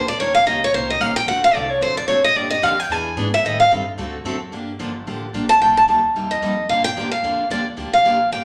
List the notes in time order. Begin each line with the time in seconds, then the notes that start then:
Already playing: D2
0.08 D5
0.19 D#2 D#3 A#3 C#4 G4 A#4 C#5
0.35 F5
0.45 C#2 D#3 A#3 C#4 G4 A#4 D#5
0.64 C#5
0.72 C2 D#3 A#3 C#4 G4 A#4 C5
0.90 D#5
1.00 A#1 D#3 A#3 C#4 G4 A#4 F5
1.16 G5
1.27 D2 D3 A3 C4 F#4 A4 F#5
1.44 F5
1.54 C2 D3 A3 C4 F#4 A4 D5
1.71 C#5
1.81 F2 D3 A3 C4 F#4 A4 C5
1.97 D5
2.08 F#2 D3 A3 C4 F#4 A4 C#5
2.24 D#5
2.35 G2 D3 F3 A#3 D4 G4 D5
2.51 D#5
2.62 F2 D3 F3 A#3 D4 G4 F5
2.80 G5
2.89 E2 E3 B3 D4 G#4 G#5
3.16 G#2 E3 B3 D4 G#4
3.34 E5
3.43 A2 D#3 G3 C4 G4 A4 D#5
3.60 F5
3.70 G2 D#3 G3 C4 G4 A4
3.97 D2 D3 A3 C4 F#4 A4
4.24 F#2 D3 A3 C4 F#4 A4
4.52 G2 D3 F3 A#3 D4 G4
4.79 G1 D3 F3 A#3 D4 G4
5.06 A1 D3 F3 A#3 D4 G4
5.33 A#1 D3 F3 A#3 D4 G4
5.49 A5
5.60 C2 C3 G3 A#3 D#4 G4 G5
5.77 A5
5.87 D2 C3 G3 A#3 D#4 G4
6.14 D#2 C3 G3 A#3 D#4 G4
6.31 D#5
6.41 F2 C3 G3 A#3 D#4 G4
6.68 G2 D3 F3 A#3 D4 G4 F5
6.84 G5
6.95 F#2 D3 F3 A#3 D4 G4
7.11 F5
7.23 F2 D3 F3 A#3 D4 G4
7.49 D#2 D3 F3 A#3 D4 G4 D5
7.77 D2 D3 F3 A#3 D4 G4
7.92 F5, muted upright bass stroke
8.04 A#1 D3 F3 A#3 D4 G4
8.31 G1 D3 F3 A#3 D4 G4 G5